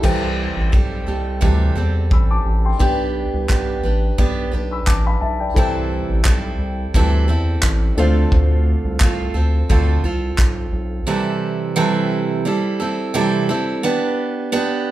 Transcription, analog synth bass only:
0.04 C2
0.56 A1
0.73 B1
1.07 C2
1.42 D2
1.76 E2
2.11 A1
2.45 A1
2.80 B1
3.34 C2
3.49 B1
3.83 A1
4.18 B1
4.53 B1
4.87 A1
5.21 B1
5.56 C2
6.09 A1
6.26 B1
6.59 C2
6.95 D2
7.28 E2
7.63 A1
7.97 D2
8.32 D2
8.85 C2
9.01 C2
9.34 D2
9.70 D2
10.03 C2
10.39 B1
10.72 B1

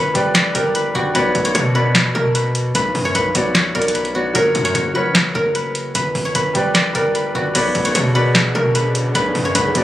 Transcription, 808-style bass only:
Already playing: G1
0.15 G1
0.55 G1
0.95 G1
1.15 B1
1.35 B1
1.55 B2
2.15 B2
2.75 B1
2.95 F#2
3.15 B1
3.35 B1
3.75 B1
4.35 F#1
4.55 F#2
4.75 F#1
5.05 A#1
5.20 F#1
5.35 F#1
5.95 G1
6.15 G1
6.35 G1
6.55 G1
6.95 G1
7.35 G1
7.55 B1
7.75 B1
7.95 B2
8.55 B2
9.15 B1
9.35 F#2
9.55 B1
9.75 B1

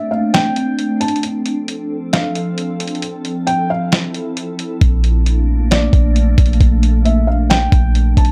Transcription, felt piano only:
Already playing: E5
0.11 F5
0.34 G5
1.01 A5
2.13 F5
3.47 G5
3.70 F5
5.71 D5
7.05 E5
7.27 F5
7.50 G5
8.17 A5

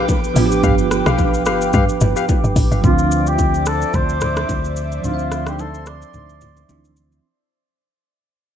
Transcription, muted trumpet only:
2.85 F4
3.27 G4
3.67 A4
3.95 C5
5.05 F4
5.48 G4
5.60 A4
5.87 D5

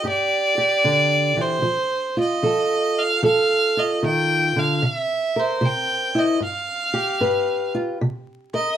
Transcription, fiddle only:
0.09 D5
1.42 C5
2.20 D#5
2.99 F5
3.25 F5
3.79 D#5
4.06 G5
4.59 F5
4.85 E5
5.40 C5
5.65 G5
6.19 D#5
6.44 F5
8.54 D#5

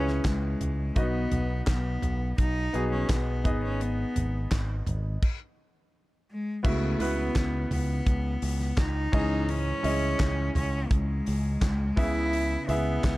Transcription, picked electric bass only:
Already playing: C#2
0.25 C#2
0.61 C#2
0.96 B1
1.32 B1
1.67 B1
2.03 B1
2.38 B1
2.74 B1
3.10 B1
3.45 G#1
4.16 G#1
4.52 G#1
4.87 G#1
6.65 C#2
7.00 C#2
7.36 C#2
7.71 C#2
8.07 C#2
8.42 C#2
8.77 C#2
9.13 C#2
9.84 C#2
10.20 C#2
10.56 C#2
10.91 C#2
11.28 C#2
11.62 C#2
11.97 C#2
12.69 C#2
13.04 C#2

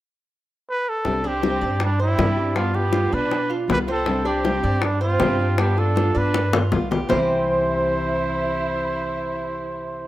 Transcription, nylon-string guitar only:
1.05 C3 G3 C4 D4 G4
1.23 C4 D4 G4
1.42 C3 G3 C4 D4 G4
1.61 C4 D4 G4
1.80 muted nylon-string guitar stroke
2.17 C3 G3 C4 D4 G4
2.37 C4 D4 G4
2.55 G3 B3 F4
2.74 B3 F4
2.92 G3 B3 F4
3.11 B3 F4
3.31 muted nylon-string guitar stroke
3.68 G3 B3 F4
3.87 B3 F4
4.05 C3 G3 C4 D4 G4
4.24 C4 D4 G4
4.44 C3 G3 C4 D4 G4
4.63 C4 D4 G4
4.82 muted nylon-string guitar stroke
5.20 C3 G3 C4 D4 G4
5.39 C4 D4 G4
5.57 G3 B3 F4
5.77 B3 F4
5.95 G3 B3 F4
6.15 B3 F4
6.34 muted nylon-string guitar stroke
6.71 G3 B3 F4
6.90 B3 F4
7.09 C3 E3 G3 C4 E4

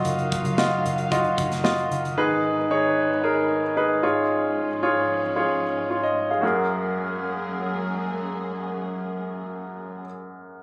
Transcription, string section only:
Already playing: D#3 F#3 A#3 F5
2.18 G#3 B3
4.04 G#2 F3 C#4
6.43 F#3 G#3 A#3 C#4 G#4

